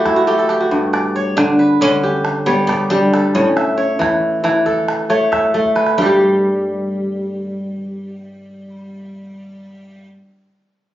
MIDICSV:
0, 0, Header, 1, 4, 480
1, 0, Start_track
1, 0, Tempo, 438596
1, 788, Time_signature, 12, 3, 24, 8
1, 11979, End_track
2, 0, Start_track
2, 0, Title_t, "Kora"
2, 0, Program_c, 0, 46
2, 0, Note_on_c, 0, 45, 79
2, 0, Note_on_c, 0, 52, 84
2, 0, Note_on_c, 0, 57, 83
2, 0, Note_on_c, 0, 66, 66
2, 0, Note_on_c, 0, 67, 68
2, 0, Note_on_c, 0, 73, 65
2, 0, Note_on_c, 0, 74, 67
2, 0, Note_on_c, 0, 76, 73
2, 61, Note_on_c, 0, 64, 69
2, 173, Note_off_c, 0, 66, 0
2, 177, Note_on_c, 0, 66, 69
2, 243, Note_off_c, 0, 67, 0
2, 293, Note_off_c, 0, 57, 0
2, 297, Note_on_c, 0, 57, 69
2, 301, Note_on_c, 0, 67, 68
2, 423, Note_on_c, 0, 69, 59
2, 460, Note_off_c, 0, 45, 0
2, 476, Note_off_c, 0, 73, 0
2, 537, Note_off_c, 0, 67, 0
2, 541, Note_on_c, 0, 67, 64
2, 555, Note_off_c, 0, 74, 0
2, 589, Note_off_c, 0, 76, 0
2, 607, Note_off_c, 0, 66, 0
2, 661, Note_on_c, 0, 66, 57
2, 780, Note_on_c, 0, 43, 70
2, 843, Note_off_c, 0, 52, 0
2, 1019, Note_on_c, 0, 74, 55
2, 1266, Note_on_c, 0, 73, 62
2, 1506, Note_on_c, 0, 50, 80
2, 1741, Note_on_c, 0, 71, 58
2, 1776, Note_off_c, 0, 64, 0
2, 1865, Note_off_c, 0, 69, 0
2, 1969, Note_off_c, 0, 50, 0
2, 1982, Note_on_c, 0, 50, 78
2, 2048, Note_off_c, 0, 73, 0
2, 2087, Note_off_c, 0, 67, 0
2, 2227, Note_on_c, 0, 67, 67
2, 2231, Note_off_c, 0, 74, 0
2, 2292, Note_off_c, 0, 66, 0
2, 2483, Note_off_c, 0, 57, 0
2, 2696, Note_on_c, 0, 55, 79
2, 2700, Note_on_c, 0, 73, 70
2, 2944, Note_on_c, 0, 74, 58
2, 3087, Note_off_c, 0, 71, 0
2, 3172, Note_off_c, 0, 55, 0
2, 3185, Note_on_c, 0, 55, 77
2, 3341, Note_off_c, 0, 43, 0
2, 3432, Note_on_c, 0, 69, 61
2, 3667, Note_on_c, 0, 45, 78
2, 3725, Note_off_c, 0, 50, 0
2, 3725, Note_off_c, 0, 55, 0
2, 3772, Note_off_c, 0, 67, 0
2, 3901, Note_on_c, 0, 76, 57
2, 3955, Note_off_c, 0, 73, 0
2, 4132, Note_on_c, 0, 73, 63
2, 4197, Note_off_c, 0, 74, 0
2, 4368, Note_on_c, 0, 52, 76
2, 4843, Note_off_c, 0, 52, 0
2, 4856, Note_on_c, 0, 52, 73
2, 4874, Note_off_c, 0, 69, 0
2, 5033, Note_off_c, 0, 76, 0
2, 5099, Note_on_c, 0, 69, 61
2, 5387, Note_off_c, 0, 73, 0
2, 5578, Note_on_c, 0, 57, 76
2, 5580, Note_on_c, 0, 73, 68
2, 5821, Note_on_c, 0, 76, 59
2, 6060, Note_off_c, 0, 57, 0
2, 6065, Note_on_c, 0, 57, 66
2, 6228, Note_off_c, 0, 45, 0
2, 6299, Note_on_c, 0, 71, 58
2, 6541, Note_off_c, 0, 69, 0
2, 6544, Note_on_c, 0, 43, 60
2, 6586, Note_on_c, 0, 55, 69
2, 6605, Note_off_c, 0, 52, 0
2, 6631, Note_on_c, 0, 67, 64
2, 6836, Note_off_c, 0, 73, 0
2, 6952, Note_off_c, 0, 76, 0
2, 7644, Note_off_c, 0, 71, 0
2, 8251, Note_off_c, 0, 57, 0
2, 11067, Note_off_c, 0, 43, 0
2, 11089, Note_off_c, 0, 55, 0
2, 11111, Note_off_c, 0, 67, 0
2, 11979, End_track
3, 0, Start_track
3, 0, Title_t, "Oud"
3, 0, Program_c, 1, 24
3, 1496, Note_on_c, 1, 62, 99
3, 1986, Note_off_c, 1, 62, 0
3, 1991, Note_on_c, 1, 61, 114
3, 2695, Note_on_c, 1, 59, 95
3, 2732, Note_off_c, 1, 61, 0
3, 2762, Note_off_c, 1, 59, 0
3, 2924, Note_on_c, 1, 59, 88
3, 3175, Note_on_c, 1, 62, 87
3, 3185, Note_off_c, 1, 59, 0
3, 3658, Note_off_c, 1, 62, 0
3, 3663, Note_on_c, 1, 61, 86
3, 6023, Note_off_c, 1, 61, 0
3, 6544, Note_on_c, 1, 55, 73
3, 11024, Note_off_c, 1, 55, 0
3, 11979, End_track
4, 0, Start_track
4, 0, Title_t, "Calabash"
4, 60, Note_on_c, 9, 36, 60
4, 60, Note_on_c, 9, 38, 58
4, 169, Note_off_c, 9, 36, 0
4, 169, Note_off_c, 9, 38, 0
4, 304, Note_on_c, 9, 38, 20
4, 414, Note_off_c, 9, 38, 0
4, 538, Note_on_c, 9, 38, 60
4, 647, Note_off_c, 9, 38, 0
4, 783, Note_on_c, 9, 36, 62
4, 893, Note_off_c, 9, 36, 0
4, 1025, Note_on_c, 9, 38, 66
4, 1134, Note_off_c, 9, 38, 0
4, 1509, Note_on_c, 9, 36, 68
4, 1509, Note_on_c, 9, 38, 61
4, 1618, Note_off_c, 9, 36, 0
4, 1618, Note_off_c, 9, 38, 0
4, 2226, Note_on_c, 9, 36, 56
4, 2336, Note_off_c, 9, 36, 0
4, 2352, Note_on_c, 9, 38, 20
4, 2458, Note_off_c, 9, 38, 0
4, 2458, Note_on_c, 9, 38, 72
4, 2568, Note_off_c, 9, 38, 0
4, 2946, Note_on_c, 9, 36, 57
4, 2946, Note_on_c, 9, 38, 68
4, 3055, Note_off_c, 9, 36, 0
4, 3055, Note_off_c, 9, 38, 0
4, 3198, Note_on_c, 9, 38, 20
4, 3307, Note_off_c, 9, 38, 0
4, 3431, Note_on_c, 9, 38, 68
4, 3540, Note_off_c, 9, 38, 0
4, 3661, Note_on_c, 9, 36, 63
4, 3770, Note_off_c, 9, 36, 0
4, 3905, Note_on_c, 9, 38, 65
4, 4014, Note_off_c, 9, 38, 0
4, 4032, Note_on_c, 9, 38, 22
4, 4141, Note_off_c, 9, 38, 0
4, 4395, Note_on_c, 9, 36, 67
4, 4395, Note_on_c, 9, 38, 68
4, 4504, Note_off_c, 9, 36, 0
4, 4504, Note_off_c, 9, 38, 0
4, 4869, Note_on_c, 9, 38, 61
4, 4978, Note_off_c, 9, 38, 0
4, 5113, Note_on_c, 9, 36, 61
4, 5223, Note_off_c, 9, 36, 0
4, 5237, Note_on_c, 9, 38, 17
4, 5346, Note_off_c, 9, 38, 0
4, 5346, Note_on_c, 9, 38, 66
4, 5455, Note_off_c, 9, 38, 0
4, 5830, Note_on_c, 9, 36, 58
4, 5830, Note_on_c, 9, 38, 55
4, 5940, Note_off_c, 9, 36, 0
4, 5940, Note_off_c, 9, 38, 0
4, 6069, Note_on_c, 9, 36, 35
4, 6178, Note_off_c, 9, 36, 0
4, 6190, Note_on_c, 9, 36, 37
4, 6300, Note_off_c, 9, 36, 0
4, 6305, Note_on_c, 9, 38, 45
4, 6415, Note_off_c, 9, 38, 0
4, 6419, Note_on_c, 9, 38, 48
4, 6528, Note_off_c, 9, 38, 0
4, 6542, Note_on_c, 9, 36, 75
4, 6652, Note_off_c, 9, 36, 0
4, 11979, End_track
0, 0, End_of_file